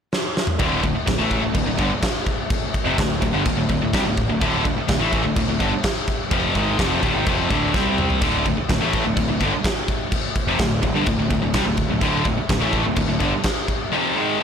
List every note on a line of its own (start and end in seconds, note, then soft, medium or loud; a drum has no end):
0.13 snare medium
0.37 snare medium
0.47 mid tom loud
0.59 0.82 D1 loud
0.59 0.83 D2 medium
0.59 0.83 A2 loud
0.59 0.83 D3 loud
0.59 kick loud
0.59 crash medium
0.83 0.94 D1 medium
0.83 0.95 D2 medium
0.83 0.96 A2 medium
0.83 kick medium
0.83 crash medium
0.95 muted picked electric bass stroke soft
0.95 muted distorted electric guitar stroke medium
1.07 1.19 D1 medium
1.07 1.17 D2 medium
1.07 1.17 A2 medium
1.07 kick loud
1.07 snare loud
1.07 crash medium
1.18 1.41 A1 loud
1.18 1.42 A2 medium
1.18 1.42 E3 medium
1.18 1.42 A3 loud
1.31 kick medium
1.31 crash medium
1.42 1.53 D1 medium
1.42 1.54 D2 medium
1.42 1.54 A2 medium
1.54 1.65 D1 medium
1.54 1.66 D2 medium
1.54 1.67 A2 medium
1.54 kick loud
1.54 crash medium
1.66 1.78 D1 medium
1.66 1.79 D2 medium
1.66 1.79 A2 medium
1.78 1.90 G1 loud
1.78 1.90 G2 medium
1.78 1.90 D3 medium
1.78 kick medium
1.78 crash medium
2.02 kick loud
2.02 snare loud
2.02 crash medium
2.26 kick medium
2.26 crash medium
2.50 kick loud
2.50 crash medium
2.74 kick medium
2.74 crash medium
2.85 2.97 F1 medium
2.85 2.97 F2 medium
2.85 2.97 C3 loud
2.98 3.20 D1 medium
2.98 3.17 D2 medium
2.98 3.17 A2 medium
2.98 kick loud
2.98 snare loud
2.98 crash medium
3.22 3.33 D1 medium
3.22 3.32 D2 medium
3.22 3.33 A2 medium
3.22 kick medium
3.22 crash medium
3.33 3.45 G1 medium
3.33 3.45 G2 medium
3.33 3.45 D3 medium
3.45 3.57 D1 medium
3.45 3.56 D2 medium
3.45 3.56 A2 medium
3.45 kick loud
3.45 crash medium
3.57 3.68 D1 medium
3.57 3.68 D2 medium
3.57 3.68 A2 medium
3.69 3.80 D1 medium
3.69 3.80 D2 medium
3.69 3.81 A2 medium
3.69 kick medium
3.69 crash medium
3.81 3.93 D1 medium
3.81 3.93 D2 medium
3.81 3.94 A2 medium
3.93 4.05 C2 loud
3.93 4.05 C3 medium
3.93 4.05 G3 loud
3.93 kick loud
3.93 snare loud
3.93 crash medium
4.05 4.27 D1 medium
4.05 4.24 D2 medium
4.05 4.25 A2 medium
4.17 kick medium
4.17 crash medium
4.29 4.40 D1 medium
4.29 4.40 D2 medium
4.29 4.40 A2 medium
4.41 4.63 D1 medium
4.41 4.64 D2 medium
4.41 4.64 A2 loud
4.41 4.65 D3 loud
4.41 kick loud
4.41 crash medium
4.65 4.76 D1 medium
4.65 4.75 D2 medium
4.65 4.77 A2 medium
4.65 kick medium
4.65 crash medium
4.77 muted distorted electric guitar stroke medium
4.77 muted picked electric bass stroke soft
4.88 4.99 D1 medium
4.88 4.99 D2 medium
4.88 4.98 A2 medium
4.88 kick loud
4.88 snare loud
4.88 crash medium
4.99 5.22 A1 loud
4.99 5.23 A2 medium
4.99 5.24 E3 medium
4.99 5.24 A3 medium
5.12 kick medium
5.12 crash medium
5.24 5.35 D1 medium
5.24 5.35 D2 medium
5.24 5.35 A2 medium
5.36 5.47 D1 medium
5.36 5.47 D2 medium
5.36 5.47 A2 medium
5.36 kick loud
5.36 crash medium
5.47 5.59 D1 medium
5.47 5.60 D2 medium
5.47 5.60 A2 medium
5.60 5.71 G1 loud
5.60 5.71 G2 medium
5.60 5.72 D3 medium
5.60 kick medium
5.60 crash medium
5.83 kick loud
5.83 snare loud
5.83 crash medium
6.07 kick medium
6.07 crash medium
6.31 6.54 F1 loud
6.31 6.55 F2 loud
6.31 6.55 C3 medium
6.31 6.55 F3 loud
6.31 kick loud
6.31 crash medium
6.55 6.78 G#1 medium
6.55 6.78 G#2 medium
6.55 6.78 D#3 loud
6.55 6.79 G#3 loud
6.55 kick medium
6.55 crash medium
6.78 7.01 F1 medium
6.78 7.02 F2 medium
6.78 7.02 C3 loud
6.78 7.03 F3 medium
6.78 kick loud
6.78 snare loud
6.78 crash medium
7.02 7.14 D1 loud
7.02 7.13 D2 medium
7.02 7.14 A2 loud
7.02 kick medium
7.02 crash medium
7.14 7.26 G#1 medium
7.14 7.25 G#2 medium
7.14 7.26 D#3 medium
7.26 7.49 F1 medium
7.26 7.49 F2 medium
7.26 7.50 C3 loud
7.26 7.50 F3 loud
7.26 kick loud
7.26 crash medium
7.50 7.73 D1 loud
7.50 7.73 D2 medium
7.50 7.74 A2 medium
7.50 7.74 D3 medium
7.50 kick medium
7.50 crash medium
7.74 8.19 C2 medium
7.74 8.20 C3 medium
7.74 8.21 G3 loud
7.74 8.21 C4 medium
7.74 kick loud
7.74 snare medium
7.98 mid tom loud
8.10 floor tom medium
8.20 8.44 D1 loud
8.20 8.44 D2 loud
8.20 8.44 A2 loud
8.20 8.45 D3 loud
8.20 kick loud
8.20 splash medium
8.20 crash medium
8.45 8.56 D1 medium
8.45 8.56 D2 medium
8.45 8.57 A2 medium
8.45 kick medium
8.45 crash medium
8.56 muted picked electric bass stroke soft
8.56 muted distorted electric guitar stroke medium
8.69 8.80 D1 medium
8.69 8.80 D2 medium
8.69 8.79 A2 medium
8.69 kick loud
8.69 snare loud
8.69 crash medium
8.81 9.03 A1 loud
8.81 9.04 A2 medium
8.81 9.04 E3 medium
8.81 9.04 A3 medium
8.93 kick medium
8.93 crash medium
9.04 9.16 D1 medium
9.04 9.15 D2 medium
9.04 9.15 A2 medium
9.16 9.28 D1 medium
9.16 9.27 D2 medium
9.16 9.27 A2 medium
9.16 kick loud
9.16 crash medium
9.28 9.39 D1 medium
9.28 9.40 D2 medium
9.28 9.40 A2 medium
9.40 9.52 G1 loud
9.40 9.52 G2 medium
9.40 9.52 D3 medium
9.40 kick medium
9.40 crash medium
9.64 kick loud
9.64 snare loud
9.64 crash medium
9.88 kick medium
9.88 crash medium
10.12 kick loud
10.12 crash medium
10.36 kick medium
10.36 crash medium
10.47 10.59 F1 medium
10.47 10.59 F2 medium
10.47 10.59 C3 medium
10.59 10.81 D1 medium
10.59 10.79 D2 medium
10.59 10.79 A2 medium
10.59 kick loud
10.59 snare loud
10.59 crash medium
10.83 10.94 D1 medium
10.83 10.95 D2 medium
10.83 10.95 A2 medium
10.83 kick medium
10.83 crash medium
10.94 11.06 G1 medium
10.94 11.06 G2 medium
10.94 11.07 D3 loud
11.06 11.18 D1 medium
11.06 11.17 D2 medium
11.06 11.18 A2 medium
11.06 kick loud
11.06 crash medium
11.18 11.30 D1 medium
11.18 11.29 D2 medium
11.18 11.30 A2 medium
11.30 11.42 D1 medium
11.30 11.40 D2 medium
11.30 11.41 A2 medium
11.30 kick medium
11.30 crash medium
11.42 11.54 D1 medium
11.42 11.54 D2 medium
11.42 11.55 A2 medium
11.54 11.65 C2 loud
11.54 11.65 C3 medium
11.54 11.66 G3 loud
11.54 kick loud
11.54 snare loud
11.54 crash medium
11.66 11.88 D1 medium
11.66 11.85 D2 medium
11.66 11.86 A2 medium
11.77 kick medium
11.77 crash medium
11.89 12.01 D1 medium
11.89 12.01 D2 medium
11.89 12.01 A2 medium
12.01 12.24 D1 medium
12.01 12.25 D2 loud
12.01 12.25 A2 loud
12.01 12.26 D3 loud
12.01 kick loud
12.01 crash medium
12.25 12.36 D1 medium
12.25 12.36 D2 medium
12.25 12.38 A2 medium
12.25 kick medium
12.25 crash medium
12.37 muted picked electric bass stroke soft
12.37 muted distorted electric guitar stroke medium
12.49 12.60 D1 medium
12.49 12.60 D2 medium
12.49 12.59 A2 medium
12.49 kick loud
12.49 snare loud
12.49 crash medium
12.60 12.83 A1 loud
12.60 12.83 A2 medium
12.60 12.84 E3 medium
12.60 12.85 A3 medium
12.73 kick medium
12.73 crash medium
12.84 12.95 D1 medium
12.84 12.94 D2 medium
12.84 12.95 A2 medium
12.95 13.07 D1 medium
12.95 13.06 D2 medium
12.95 13.07 A2 medium
12.95 kick loud
12.95 crash medium
13.07 13.19 D1 medium
13.07 13.19 D2 medium
13.07 13.19 A2 medium
13.19 13.32 G1 medium
13.19 13.31 G2 medium
13.19 13.32 D3 medium
13.19 kick medium
13.19 crash medium
13.43 kick loud
13.43 snare loud
13.43 crash medium
13.68 kick medium
13.68 crash medium
13.92 14.15 F2 loud
13.92 14.15 C3 loud
13.92 14.16 F3 loud
14.16 14.39 G#2 medium
14.16 14.39 D#3 loud
14.16 14.39 G#3 loud
14.40 14.43 F2 medium
14.40 14.43 C3 loud